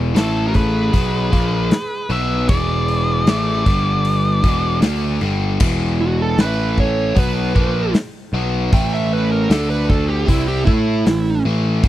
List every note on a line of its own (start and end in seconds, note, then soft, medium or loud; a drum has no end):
0.00 0.12 E1 medium
0.00 0.15 E2 medium
0.00 0.14 B2 medium
0.00 0.14 E3 medium
0.15 0.89 A1 loud
0.15 0.92 A2 medium
0.15 0.92 E3 medium
0.15 0.92 A3 medium
0.15 0.45 E4 medium
0.15 0.47 A4 medium
0.15 snare loud
0.15 open hi-hat medium
0.47 0.54 F#4 medium
0.47 0.55 A#4 medium
0.54 2.06 G#4 medium
0.54 2.16 B4 medium
0.54 kick medium
0.54 open hi-hat soft
0.93 1.30 B1 medium
0.93 1.31 B2 medium
0.93 1.31 F#3 medium
0.93 1.32 B3 medium
0.93 kick medium
0.93 open hi-hat medium
1.32 1.69 A#1 medium
1.32 1.70 A#2 medium
1.32 1.70 F3 medium
1.32 1.71 A#3 medium
1.32 kick medium
1.32 open hi-hat soft
1.71 muted overdriven electric guitar stroke medium
1.71 muted picked electric bass stroke soft
1.71 snare loud
1.71 open hi-hat medium
2.10 2.46 B1 medium
2.10 2.48 B2 medium
2.10 2.48 F#3 medium
2.10 2.48 B3 loud
2.10 2.46 B4 medium
2.10 2.47 E5 medium
2.10 open hi-hat soft
2.49 3.23 E1 medium
2.49 3.26 E2 medium
2.49 3.26 B2 medium
2.49 3.26 E3 loud
2.49 3.62 G#4 medium
2.49 4.79 D5 medium
2.49 kick loud
2.49 open hi-hat medium
2.88 open hi-hat soft
3.26 3.63 A1 medium
3.26 3.65 A2 loud
3.26 3.66 E3 medium
3.26 3.66 A3 loud
3.26 snare loud
3.26 open hi-hat medium
3.66 4.40 G1 medium
3.66 4.43 G2 medium
3.66 4.43 D3 medium
3.66 4.44 G3 medium
3.66 kick medium
3.66 open hi-hat soft
4.05 open hi-hat medium
4.43 4.80 E1 medium
4.43 4.82 E2 medium
4.43 4.81 B2 medium
4.43 4.82 E3 loud
4.43 kick medium
4.43 open hi-hat medium
4.81 5.18 D2 medium
4.81 5.20 D3 medium
4.81 5.20 A3 medium
4.81 5.21 D4 medium
4.81 snare loud
4.81 open hi-hat medium
5.21 5.58 G1 medium
5.21 5.59 G2 medium
5.21 5.60 D3 medium
5.21 5.60 G3 medium
5.21 open hi-hat soft
5.60 6.35 E1 medium
5.60 6.37 E2 medium
5.60 6.39 B2 medium
5.60 6.37 E3 medium
5.60 kick loud
5.60 crash loud
6.01 6.22 F#4 medium
6.22 6.41 A4 medium
6.38 7.12 A1 medium
6.38 7.14 A2 medium
6.38 7.14 E3 loud
6.38 7.15 A3 medium
6.38 6.77 B4 medium
6.38 snare loud
6.38 open hi-hat medium
6.78 7.17 C#5 medium
6.78 kick medium
7.15 7.53 B1 medium
7.15 7.54 B2 medium
7.15 7.54 F#3 medium
7.15 7.54 B3 medium
7.15 7.93 B4 medium
7.15 kick medium
7.15 open hi-hat medium
7.55 7.92 A#1 loud
7.55 7.93 A#2 medium
7.55 7.93 F3 medium
7.55 7.93 A#3 medium
7.55 kick medium
7.94 muted picked electric bass stroke soft
7.94 muted overdriven electric guitar stroke medium
7.94 snare loud
7.94 open hi-hat soft
8.33 8.69 B1 medium
8.33 8.71 B2 medium
8.33 8.72 F#3 loud
8.33 8.72 B3 loud
8.72 9.46 A1 medium
8.72 9.49 A2 medium
8.72 9.49 E3 medium
8.72 9.49 A3 medium
8.72 8.92 G5 loud
8.72 kick loud
8.72 open hi-hat medium
8.94 9.12 E5 medium
9.13 9.31 B4 medium
9.32 9.51 A#4 medium
9.50 10.24 D2 medium
9.50 10.26 D3 medium
9.50 10.27 A3 medium
9.50 10.27 D4 loud
9.50 9.69 A4 medium
9.50 snare loud
9.50 open hi-hat medium
9.70 9.89 B4 medium
9.90 10.09 A4 medium
9.90 kick medium
10.08 10.27 G4 medium
10.26 10.64 C2 medium
10.26 10.65 C3 medium
10.26 10.65 G3 medium
10.26 10.65 C4 medium
10.26 10.47 E4 medium
10.26 kick medium
10.26 open hi-hat medium
10.48 10.65 G4 medium
10.65 11.03 A2 loud
10.65 11.04 A3 medium
10.65 11.42 E4 loud
10.65 11.04 E4 loud
10.65 11.05 A4 loud
10.65 kick medium
11.06 11.42 A1 medium
11.06 11.37 A2 medium
11.06 11.38 E3 medium
11.06 snare loud
11.06 open hi-hat medium
11.45 11.81 A1 medium
11.45 11.83 A2 medium
11.45 11.83 E3 loud
11.45 11.84 A3 loud
11.83 11.88 E1 medium
11.83 11.88 E2 medium
11.83 11.88 B2 loud
11.83 11.88 E3 medium
11.83 kick loud
11.83 open hi-hat medium